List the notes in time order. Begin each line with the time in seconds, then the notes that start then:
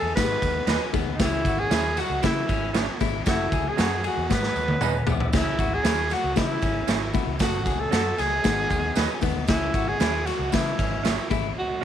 Already playing: G#4 A4
0.02 E2
0.16 G#2 D#3 G#3 B3 D#4 G4 B4, kick, snare, ride, tambourine
0.24 G#4
0.42 D#2, kick, ride, tambourine
0.67 D#2 B3 C#4 D#4 G#4 B4, snare, ride, tambourine
0.93 D#2 D#3 G#3 B3 D#4 G#4, kick, ride, tambourine
1.07 D2
1.14 D#4
1.19 C#2 E3 G#3 C#4 E4 G#4, kick, snare, ride, tambourine
1.45 G#1 F#4, kick, ride, tambourine
1.60 G#4
1.70 D#2 C#4 E4 G#4 C#5, snare, ride, tambourine
1.97 F#4, snare, ride, tambourine
2.09 C#2
2.22 C#3 E3 G#3 C#4 E4 G#4, kick, snare, ride, tambourine
2.49 G#1 C#4, kick, ride, tambourine
2.74 C#4 E4 G#4 C#5, snare, ride, tambourine
3.00 G#1 E3 G#3 C#4 E4 G#4, kick, ride, tambourine
3.26 F#1 F#3 A3 C#4 E4 F#4 G#4, kick, snare, ride, tambourine
3.34 A4
3.52 C#2 G#4, kick, ride, tambourine
3.69 G#4
3.77 F#2 C#4 F#4 A4 C#5, snare, ride, tambourine
4.04 F#4 G#4, ride, tambourine
4.17 E2
4.30 G#2 D#3 G#3 B3 D#4 G#4 B4, kick, snare, tambourine
4.43 snare
4.56 D#2, tambourine
4.68 high tom
4.81 D#2 B3 C#4 D#4 G#4 B4, mid tom, tambourine
5.06 B1 D#3 G#3 B3 D#4 G#4, floor tom, tambourine
5.20 floor tom
5.33 C#2 E3 G#3 C#4 E4 G#4, kick, snare, tambourine, crash
5.59 G#1 F#4, kick, ride, tambourine
5.74 G#4
5.83 D#2 C#4 E4 G#4 C#5, snare, ride, tambourine
6.10 F#4, snare, ride, tambourine
6.24 C#2
6.35 C#3 E3 G#3 C#4 E4 G#4, kick, snare, ride, tambourine
6.62 G#1 C#4, kick, ride, tambourine
6.87 G#1 C#4 E4 G#4 C#5, snare, ride, tambourine
7.14 E3 G#3 C#4 E4 F#4, kick, ride, tambourine
7.27 C#2
7.39 F#1 F#3 A3 C#4 F#4 A4, kick, snare, ride, tambourine
7.66 C#2 G#4, kick, ride, tambourine
7.80 A4
7.91 F#2 C#4 F#4 A4 C#5, snare, ride, tambourine
8.18 C#2 G#4, snare, ride, tambourine
8.44 G#1 D#3 G#3 B3 D#4 G#4, kick, snare, ride, tambourine
8.70 D#2, kick, ride, tambourine
8.95 D#2 B3 C#4 D#4 G#4 B4, snare, ride, tambourine
9.21 D#2 D#3 G#3 B3 D#4 B4, kick, ride, tambourine
9.36 D2
9.47 C#2 E3 G#3 C#4 E4 G#4, kick, snare, ride, tambourine
9.73 G#1 F#4, kick, ride, tambourine
9.88 G#4
10.00 D#2 C#4 E4 G#4 C#5, snare, ride, tambourine
10.26 F#4, snare, ride, tambourine
10.39 C#2
10.52 C#3 E3 G#3 C#4 E4 B4, kick, snare, ride, tambourine
10.78 G#1 C#4, kick, ride, tambourine
11.04 C#4 E4 G#4 C#5, snare, ride, tambourine
11.30 G#1 E3 G#3 C#4 E4 G#4, kick, ride, tambourine
11.58 F#4